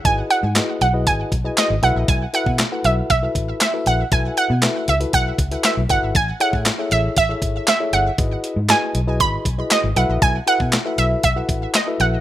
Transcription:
<<
  \new Staff \with { instrumentName = "Synth pluck" } { \time 4/4 \key b \mixolydian \tempo 4 = 118 gis''8 fis''4 fis''8 gis''4 dis''8 fis''8 | gis''8 fis''4 e''8 e''4 e''8 fis''8 | gis''8 fis''4 e''8 fis''4 e''8 fis''8 | gis''8 fis''4 e''8 e''4 e''8 fis''8~ |
fis''4 gis''4 b''4 dis''8 fis''8 | gis''8 fis''4 e''8 e''4 dis''8 fis''8 | }
  \new Staff \with { instrumentName = "Tine electric piano" } { \time 4/4 \key b \mixolydian <e' fis' gis' b' dis''>8. r16 <e' fis' gis' b' dis''>8 r16 <e' fis' gis' b' dis''>8. r16 <e' fis' gis' b' dis''>8 r16 <e' fis' a' b' e''>8~ | <e' fis' a' b' e''>16 r16 <e' fis' a' b' e''>8 r16 <e' fis' a' b' fis''>8. r16 <e' fis' a' b' e''>8. r16 <e' fis' a' b' e''>8 r16 | <e' fis' a' b' e''>8. r16 <e' fis' a' b' e''>8 r16 <e' fis' a' b' e''>8. r16 <e' fis' a' b' e''>8 r16 <e' fis' a' b' e''>8 | r8 <e' gis' a' cis'' e''>8 r16 <e' gis' a' cis'' e''>8. r16 <e' gis' a' cis'' e''>8. r16 <e' gis' a' cis'' e''>8 r16 |
<e' fis' gis' b' dis''>8. r16 <e' fis' gis' b' dis''>8 r16 <e' fis' gis' b' dis''>8. r16 <e' fis' gis' b' dis''>8 r16 <e' fis' a' b' e''>8~ | <e' fis' a' b' e''>16 r16 <e' fis' a' b' e''>8 r16 <e' fis' a' b' e''>8. r16 <e' fis' a' b' fis''>8. r16 <e' fis' a' b' e''>8 r16 | }
  \new Staff \with { instrumentName = "Fingered electric bass" } { \clef bass \time 4/4 \key b \mixolydian gis,,8 r16 gis,8 r16 b,,8 gis,,8 b,,8 r16 gis,,16 b,,16 ais,,16 | b,,8 r16 b,8 r16 b,,8 b,,8 a,,8 r8 ais,,8 | b,,8 r16 b,8 r16 cis,8 b,,8 cis,8 r16 b,,16 g,,16 gis,,16 | a,,8 r16 a,8 r16 a,,8 a,,8 gis,,8 r8 g,,8 |
gis,,8 r16 gis,8 r16 b,,8 gis,,8 b,,8 r16 gis,,16 b,,16 ais,,16 | b,,8 r16 b,8 r16 b,,8 b,,8 a,,8 r8 ais,,8 | }
  \new DrumStaff \with { instrumentName = "Drums" } \drummode { \time 4/4 <hh bd>8 hh8 <hc hh sn>8 hh8 <hh bd>8 <hh bd>8 <hc hh sn>8 hh8 | <hh bd>8 hh16 bd16 <hc hh sn>8 hh8 <hh bd>8 <hh bd>8 <hc hh sn>8 hh8 | <hh bd>8 hh8 <hc hh sn>8 hh16 hh16 <hh bd>8 <hh bd>16 hh16 <hc hh sn>8 <hh bd>8 | <hh bd>8 hh16 bd16 <hc hh sn>8 hh8 <hh bd>8 <hh bd>8 <hc hh sn>8 hh8 |
<hh bd>8 hh8 <hc hh sn>8 hh8 <hh bd>8 <hh bd>8 <hc hh sn>8 hh8 | <hh bd>8 hh16 bd16 <hc hh sn>8 hh8 <hh bd>8 <hh bd>8 <hc hh sn>8 hh8 | }
>>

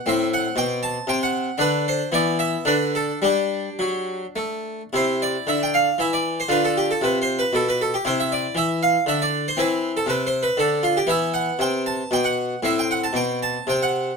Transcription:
<<
  \new Staff \with { instrumentName = "Harpsichord" } { \time 3/4 \key g \major \tempo 4 = 116 << { e''8 fis''8 g''8 a''8 g''16 fis''8. | b'8 c''8 d''8 e''8 b'8 a'8 | g'2 r4 | \key c \major c''8 d''8 e''16 g''16 f''8 e''16 d''8 c''16 |
b'16 a'16 g'16 a'16 \tuplet 3/2 { b'8 c''8 b'8 } a'16 b'16 a'16 g'16 | c''16 e''16 d''8 e''8 f''8 e''16 d''8 c''16 | b'8. a'16 \tuplet 3/2 { b'8 c''8 b'8 } a'8 f'16 g'16 | \key e \minor e''8 fis''8 g''8 a''8 g''16 fis''8. |
e''16 g''16 fis''16 a''16 g''8 a''8 g''16 fis''8. | } \\ { c'2. | d'4 b4 d'4 | d'2. | e'2. |
f'2. | e'2. | c'2. | b2. |
c'2. | } >> }
  \new Staff \with { instrumentName = "Harpsichord" } { \clef bass \time 3/4 \key g \major a,4 b,4 c4 | d4 e4 d4 | g4 fis4 a4 | \key c \major c4 d4 e4 |
d4 c4 b,4 | c4 e4 d4 | e4 c4 d4 | \key e \minor e4 c4 b,4 |
a,4 b,4 c4 | }
>>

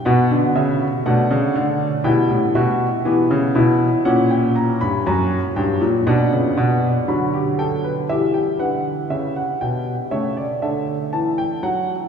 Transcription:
<<
  \new Staff \with { instrumentName = "Grand piano" } { \time 4/4 \key e \minor \tempo 4 = 60 << { fis''8 e''8 fis''4 g''8 e''4. | fis''16 g''16 ais''16 b''16 ais''8 g''8 fis''4 b''8 g''8 | e''16 g''16 fis''8 e''16 fis''16 g''8 e''16 d''16 e''8 a''16 g''16 fis''8 | } \\ { fis'4 d'4 e'8 fis'8 g'8 e'8~ | e'4 fis'4 d'4 fis'16 g'16 a'16 b'16 | g'8 b'4. cis''8 a'4. | } >> }
  \new Staff \with { instrumentName = "Grand piano" } { \clef bass \time 4/4 \key e \minor << { b4 a4 g4 b4 | cis'2 b4 fis4 | g2 a2 | } \\ { b,16 d16 cis8 b,16 cis16 d8 b,16 a,16 b,8 e16 cis16 b,8 | ais,8. g,16 fis,8 g,16 ais,16 b,16 cis16 b,8 d4 | e8 d8 cis8 b,8 cis8 d8 e8 fis8 | } >> }
>>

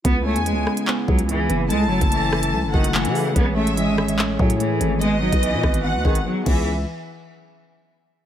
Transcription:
<<
  \new Staff \with { instrumentName = "Violin section" } { \time 4/4 \key cis \minor \tempo 4 = 145 r8 gis''4. r2 | a''2~ a''8 fis''4. | r8 e''4. r2 | dis''2 fis''4 r8 e''8 |
r1 | }
  \new Staff \with { instrumentName = "Woodwind section" } { \time 4/4 \key cis \minor <cis b e'>1 | <fis a'>1 | <cis' gis' cis''>1 | <gis fis' b'>2.~ <gis fis' b'>8 <cis b e'>8 |
r1 | }
  \new Staff \with { instrumentName = "Synth keys" } { \time 4/4 \key cis \minor b8 cis'8 b4 b8 gis'8 b8 b'8 | a8 cis'8 a4 a8 fis'8 a8 a'8 | gis8 cis'8 e4 a8 gis'8 a8 a'8 | b8 dis'8 b4 b8 gis'8 b8 <b cis' e' gis'>8 |
r1 | }
  \new Staff \with { instrumentName = "Cello" } { \clef bass \time 4/4 \key cis \minor b8 a8 gis4 r8 fis8 e4 | gis8 fis8 e4 r8 dis8 e4 | b8 a8 gis4 r8 fis8 e4 | gis8 fis8 e4 r8 dis8 fis8 e8 |
r1 | }
  \new Staff \with { instrumentName = "808-style bass" } { \clef bass \time 4/4 \key cis \minor cis,8. e,16. cis,16. r4 cis,4 fis,,8 | cis,16. fis,,16. fis,,4~ fis,,16 cis,16 fis,,16 fis,,8. cis8. | a,,4~ a,,16 gis,,8~ gis,,32 a,,8~ a,,32 a,4 gis,,8~ | gis,,8. b,,8 b,16 gis,,8. dis,16 gis,,8 r8 cis,8~ |
cis,8 r2. r8 | }
  \new DrumStaff \with { instrumentName = "Drums" } \drummode { \time 4/4 <hh bd>8. hh16 hh8 ss16 hh16 hc8 bd16 hh16 hh8 hh8 | hh8. <hh bd>16 hh8 ss16 hh16 r8 bd16 hh16 hc16 hh16 hho8 | <hh bd>8. hh16 hh8 ss16 hh16 hc8 bd16 hh16 hh8 hh8 | hh8. <hh bd>16 hh8 <bd ss>16 hh16 r8 bd16 hh16 r8 <cymc bd>8 |
r4 r4 r4 r4 | }
>>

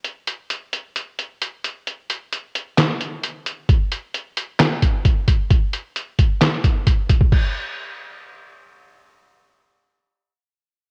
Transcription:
\new DrumStaff \with { instrumentName = "Drums" } \drummode { \time 4/4 \tempo 4 = 132 hh8 hh8 hh8 hh8 hh8 hh8 hh8 hh8 | hh8 hh8 hh8 hh8 <hc hh sn>8 hh8 hh8 hh8 | <hh bd>8 hh8 hh8 hh8 <hc hh sn>8 <hh bd>8 <hh bd>8 <hh bd>8 | <hh bd>8 hh8 hh8 <hh bd>8 <hc hh sn>8 <hh bd>8 <hh bd>8 <hh bd>16 bd16 |
<cymc bd>4 r4 r4 r4 | r4 r4 r4 r4 | }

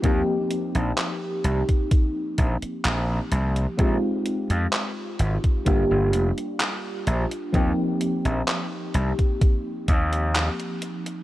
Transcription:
<<
  \new Staff \with { instrumentName = "FM electric piano" } { \time 4/4 \key ees \major \tempo 4 = 64 <f bes c' ees' g'>1 | <aes c' ees' f' g'>2 <g bes d' f' g'>2 | <f bes c' ees' g'>1 | }
  \new Staff \with { instrumentName = "Slap bass" } { \clef bass \time 4/4 \key ees \major ees,16 r8 bes,,16 r8 c,16 r8. bes,,16 r16 bes,,16 r16 c,16 r16 | bes,,16 r8 f,16 r8 aes,,16 r16 g,,16 g,,16 f,,16 r8. bes,,16 r16 | ees,16 r8 bes,,16 r8 c,16 r8. ees,8. r8. | }
  \new DrumStaff \with { instrumentName = "Drums" } \drummode { \time 4/4 <hh bd>8 hh16 hh16 <hc hh>8 hh16 <hh bd>16 <hh bd>8 <hh bd>16 hh16 <hc hh>8 hh16 hh16 | <hh bd>8 hh16 hh16 <hc hh>8 hh16 <hh bd>16 <hh bd>8 hh16 hh16 <hc hh>8 hh16 hh16 | <hh bd>8 hh16 hh16 <hc hh>8 hh16 <hh bd>16 <hh bd>8 <hh bd>16 hh16 <hc hh>16 hh16 hh16 hh16 | }
>>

